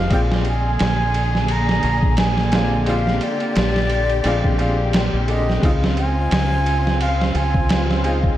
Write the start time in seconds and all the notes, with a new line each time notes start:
Already playing: G#3 C4 D#4 G4 F5
0.08 A#1 D3 G#3 A#3 C4 D4 G#4, kick, ride
0.13 F4 G5
0.32 snare
0.45 G#5, ride
0.79 A#1, snare, ride
1.14 ride
1.35 snare
1.48 A#5, ride
1.69 snare
1.83 A#1, ride
2.03 kick
2.17 G#5, snare, ride
2.38 snare
2.52 G#3 C4 D4 F4, snare, ride
2.84 G#3 C4 D4 G4, ride
2.89 F4 F5
3.07 snare
3.21 D5, ride
3.40 ride
3.56 A#1, snare, ride
3.76 snare
3.90 ride
4.10 ride
4.23 A#1 G#3 C4 D4 F4, ride
4.44 kick
4.58 G#3 C4 D4 F4, ride
4.93 snare, ride
5.14 A#1
5.27 D3 G#3 C4 G4 D#5, ride
5.50 snare
5.60 C#2 C#3 G#3 C4 D#4 F4 D#5, kick, ride
5.65 F4
5.84 snare
5.97 G#5, ride
6.31 C#2, snare, ride
6.66 ride
6.87 snare
7.01 F5, ride
7.21 snare
7.35 C#2 G#5, ride
7.54 kick
7.69 snare, ride
7.91 snare
8.02 G#3 C4 D#4 F4 G#5, ride
8.24 kick